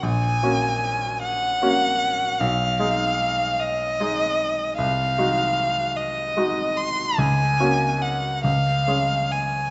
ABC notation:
X:1
M:12/8
L:1/8
Q:3/8=50
K:F#
V:1 name="Violin"
g3 f3 e3 d3 | e3 d2 ^b g2 f e2 g |]
V:2 name="Grand piano"
A,,, [A,CF]3 [A,CF]2 B,,, [G,DG]3 [G,DG]2 | ^B,,, [G,DF]3 [G,DF]2 C,, [A,CF]2 C,, [G,CG]2 |]